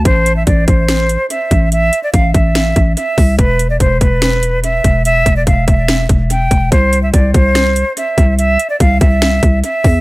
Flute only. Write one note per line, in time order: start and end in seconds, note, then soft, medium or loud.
0.05 0.35 C5 loud
0.36 0.45 E5 medium
0.47 0.65 D5 medium
0.68 1.26 C5 medium
1.30 1.69 E5 medium
1.73 2.02 E5 loud
2.03 2.12 D5 medium
2.13 2.31 F5 medium
2.34 2.93 E5 medium
2.96 3.36 E5 medium
3.39 3.68 B4 loud
3.70 3.79 D5 medium
3.80 3.98 C5 medium
4.01 4.60 B4 medium
4.64 5.03 E5 medium
5.05 5.35 E5 loud
5.36 5.45 D5 medium
5.47 5.65 F5 medium
5.68 6.06 E5 medium
6.31 6.70 G5 medium
6.72 7.01 C5 loud
7.03 7.12 E5 medium
7.13 7.31 D5 medium
7.34 7.93 C5 medium
7.98 8.36 E5 medium
8.38 8.68 E5 loud
8.70 8.79 D5 medium
8.80 8.98 F5 medium
9.00 9.60 E5 medium
9.64 10.01 E5 medium